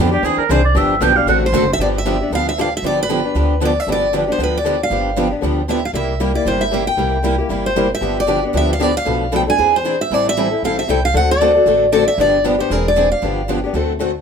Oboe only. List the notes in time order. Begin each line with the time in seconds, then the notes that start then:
0.12 G4
0.25 G#4
0.38 A#4
0.51 C5
0.65 D5
0.77 E5
1.02 G5
1.17 F5
1.29 F#5